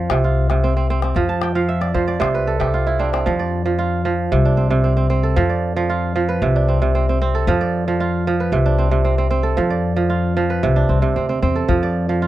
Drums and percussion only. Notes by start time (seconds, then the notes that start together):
0.10 calabash click
0.50 calabash click
1.02 calabash click
1.15 calabash thump, calabash click
1.42 calabash click
1.82 calabash click
1.95 calabash thump, calabash click
2.09 calabash click
2.22 calabash click
2.61 calabash thump, calabash click
3.14 calabash click
11.69 calabash thump